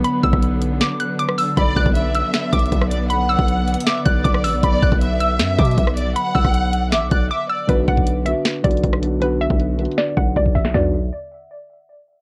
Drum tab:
HH |x-----------x-----x-----x-----x-----x-----o-----|x-----------x-----x-----x-----x-x-x-x-----x-----|x-----------x-----x-x-x-x-----x-----x-----o-----|x-----------x-----x-----x-----x-x-x-x-----x-----|
SD |---------r--------------o--------------r--------|------------------------o--------------r--------|------------------------o--------------r--------|------------------------o--------------r--------|
FT |------------------------------------------------|------------------------------------------------|------------------------------------------------|------------------------------------------------|
BD |------o--o--------------------------------------|o-----o--o--------------------o-----o-----------|---------o--------------------o-----o-----------|o-----o--o--------------------o-----o-----------|

HH |x-----------x-----x-----x-----x-----------------|x-----------x-----x-----x-----x-x-x-x-----x-----|x-----------x-----x-x-x-x-----x-----x-----o-----|------------------------------------------------|
SD |---------r--------------o-----------------------|------------------------o--------------r--------|------------------------o--------------------o--|o-----------------------------------------------|
FT |------------------------------------------------|------------------------------------------------|------------------------------------------------|o-----------------------------------------------|
BD |------o--o--------------------o-----------------|o-----o--o--------------------o-----o-----------|---------o--------------------o-----o--o--o-----|------------------------------------------------|